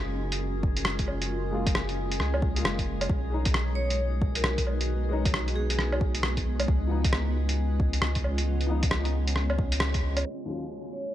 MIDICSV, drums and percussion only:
0, 0, Header, 1, 2, 480
1, 0, Start_track
1, 0, Tempo, 447761
1, 1397, Time_signature, 4, 2, 24, 8
1, 11947, End_track
2, 0, Start_track
2, 0, Title_t, "Drums"
2, 343, Note_on_c, 9, 42, 55
2, 450, Note_off_c, 9, 42, 0
2, 678, Note_on_c, 9, 36, 105
2, 785, Note_off_c, 9, 36, 0
2, 821, Note_on_c, 9, 42, 55
2, 910, Note_on_c, 9, 37, 110
2, 928, Note_off_c, 9, 42, 0
2, 1017, Note_off_c, 9, 37, 0
2, 1061, Note_on_c, 9, 42, 41
2, 1065, Note_on_c, 9, 36, 59
2, 1155, Note_on_c, 9, 77, 34
2, 1168, Note_off_c, 9, 42, 0
2, 1172, Note_off_c, 9, 36, 0
2, 1262, Note_off_c, 9, 77, 0
2, 1304, Note_on_c, 9, 42, 56
2, 1411, Note_off_c, 9, 42, 0
2, 1785, Note_on_c, 9, 36, 106
2, 1786, Note_on_c, 9, 42, 56
2, 1876, Note_on_c, 9, 37, 101
2, 1892, Note_off_c, 9, 36, 0
2, 1893, Note_off_c, 9, 42, 0
2, 1983, Note_off_c, 9, 37, 0
2, 2025, Note_on_c, 9, 42, 30
2, 2132, Note_off_c, 9, 42, 0
2, 2268, Note_on_c, 9, 42, 53
2, 2357, Note_on_c, 9, 37, 64
2, 2375, Note_off_c, 9, 42, 0
2, 2465, Note_off_c, 9, 37, 0
2, 2507, Note_on_c, 9, 77, 61
2, 2598, Note_on_c, 9, 36, 104
2, 2614, Note_off_c, 9, 77, 0
2, 2705, Note_off_c, 9, 36, 0
2, 2749, Note_on_c, 9, 42, 50
2, 2842, Note_on_c, 9, 37, 105
2, 2856, Note_off_c, 9, 42, 0
2, 2949, Note_off_c, 9, 37, 0
2, 2987, Note_on_c, 9, 36, 60
2, 2990, Note_on_c, 9, 42, 41
2, 3094, Note_off_c, 9, 36, 0
2, 3098, Note_off_c, 9, 42, 0
2, 3229, Note_on_c, 9, 42, 53
2, 3229, Note_on_c, 9, 77, 56
2, 3318, Note_on_c, 9, 36, 109
2, 3336, Note_off_c, 9, 42, 0
2, 3336, Note_off_c, 9, 77, 0
2, 3425, Note_off_c, 9, 36, 0
2, 3703, Note_on_c, 9, 42, 54
2, 3708, Note_on_c, 9, 36, 98
2, 3797, Note_on_c, 9, 37, 94
2, 3810, Note_off_c, 9, 42, 0
2, 3815, Note_off_c, 9, 36, 0
2, 3905, Note_off_c, 9, 37, 0
2, 4185, Note_on_c, 9, 42, 53
2, 4293, Note_off_c, 9, 42, 0
2, 4519, Note_on_c, 9, 36, 103
2, 4626, Note_off_c, 9, 36, 0
2, 4667, Note_on_c, 9, 42, 52
2, 4758, Note_on_c, 9, 37, 103
2, 4774, Note_off_c, 9, 42, 0
2, 4865, Note_off_c, 9, 37, 0
2, 4910, Note_on_c, 9, 36, 58
2, 4910, Note_on_c, 9, 42, 42
2, 5004, Note_on_c, 9, 77, 32
2, 5017, Note_off_c, 9, 36, 0
2, 5017, Note_off_c, 9, 42, 0
2, 5111, Note_off_c, 9, 77, 0
2, 5154, Note_on_c, 9, 42, 52
2, 5261, Note_off_c, 9, 42, 0
2, 5632, Note_on_c, 9, 36, 104
2, 5633, Note_on_c, 9, 42, 52
2, 5723, Note_on_c, 9, 37, 92
2, 5739, Note_off_c, 9, 36, 0
2, 5740, Note_off_c, 9, 42, 0
2, 5830, Note_off_c, 9, 37, 0
2, 5873, Note_on_c, 9, 42, 29
2, 5980, Note_off_c, 9, 42, 0
2, 6111, Note_on_c, 9, 42, 53
2, 6203, Note_on_c, 9, 37, 56
2, 6218, Note_off_c, 9, 42, 0
2, 6310, Note_off_c, 9, 37, 0
2, 6351, Note_on_c, 9, 77, 66
2, 6443, Note_on_c, 9, 36, 99
2, 6459, Note_off_c, 9, 77, 0
2, 6550, Note_off_c, 9, 36, 0
2, 6588, Note_on_c, 9, 42, 50
2, 6680, Note_on_c, 9, 37, 98
2, 6696, Note_off_c, 9, 42, 0
2, 6787, Note_off_c, 9, 37, 0
2, 6830, Note_on_c, 9, 42, 39
2, 6831, Note_on_c, 9, 36, 54
2, 6937, Note_off_c, 9, 42, 0
2, 6938, Note_off_c, 9, 36, 0
2, 7071, Note_on_c, 9, 42, 50
2, 7071, Note_on_c, 9, 77, 59
2, 7164, Note_on_c, 9, 36, 111
2, 7178, Note_off_c, 9, 42, 0
2, 7178, Note_off_c, 9, 77, 0
2, 7271, Note_off_c, 9, 36, 0
2, 7552, Note_on_c, 9, 36, 101
2, 7552, Note_on_c, 9, 42, 54
2, 7640, Note_on_c, 9, 37, 90
2, 7659, Note_off_c, 9, 42, 0
2, 7660, Note_off_c, 9, 36, 0
2, 7747, Note_off_c, 9, 37, 0
2, 8029, Note_on_c, 9, 42, 53
2, 8136, Note_off_c, 9, 42, 0
2, 8359, Note_on_c, 9, 36, 92
2, 8466, Note_off_c, 9, 36, 0
2, 8505, Note_on_c, 9, 42, 51
2, 8594, Note_on_c, 9, 37, 98
2, 8612, Note_off_c, 9, 42, 0
2, 8701, Note_off_c, 9, 37, 0
2, 8740, Note_on_c, 9, 42, 41
2, 8748, Note_on_c, 9, 36, 56
2, 8836, Note_on_c, 9, 77, 36
2, 8847, Note_off_c, 9, 42, 0
2, 8855, Note_off_c, 9, 36, 0
2, 8943, Note_off_c, 9, 77, 0
2, 8985, Note_on_c, 9, 42, 51
2, 9092, Note_off_c, 9, 42, 0
2, 9226, Note_on_c, 9, 42, 32
2, 9334, Note_off_c, 9, 42, 0
2, 9463, Note_on_c, 9, 42, 60
2, 9466, Note_on_c, 9, 36, 100
2, 9552, Note_on_c, 9, 37, 95
2, 9570, Note_off_c, 9, 42, 0
2, 9573, Note_off_c, 9, 36, 0
2, 9660, Note_off_c, 9, 37, 0
2, 9703, Note_on_c, 9, 42, 32
2, 9810, Note_off_c, 9, 42, 0
2, 9943, Note_on_c, 9, 42, 55
2, 10031, Note_on_c, 9, 37, 59
2, 10050, Note_off_c, 9, 42, 0
2, 10138, Note_off_c, 9, 37, 0
2, 10182, Note_on_c, 9, 77, 71
2, 10276, Note_on_c, 9, 36, 96
2, 10289, Note_off_c, 9, 77, 0
2, 10383, Note_off_c, 9, 36, 0
2, 10420, Note_on_c, 9, 42, 55
2, 10507, Note_on_c, 9, 37, 104
2, 10527, Note_off_c, 9, 42, 0
2, 10614, Note_off_c, 9, 37, 0
2, 10658, Note_on_c, 9, 42, 43
2, 10663, Note_on_c, 9, 36, 56
2, 10766, Note_off_c, 9, 42, 0
2, 10770, Note_off_c, 9, 36, 0
2, 10899, Note_on_c, 9, 42, 57
2, 10899, Note_on_c, 9, 77, 61
2, 11006, Note_off_c, 9, 42, 0
2, 11006, Note_off_c, 9, 77, 0
2, 11947, End_track
0, 0, End_of_file